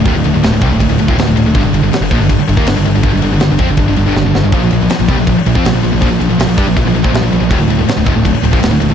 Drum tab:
CC |x-x-x-x-x-x-x-x-|x-x-x-x-x-x-x-x-|x-x-x-x-x-x-----|x-x-x-x-x-x-x-x-|
SD |----o-------o---|----o-------o---|----o-------o-o-|----o-------o---|
BD |o-----o-o--o----|o-----o-o--o----|o-----o-o-------|o-----o-o--o----|

CC |x-x-x-x-x-x-x-x-|x-x-x-x-x-x-x-x-|
SD |----o-------o---|----o-------o---|
BD |o-----o-o--o----|o-----o-o--o----|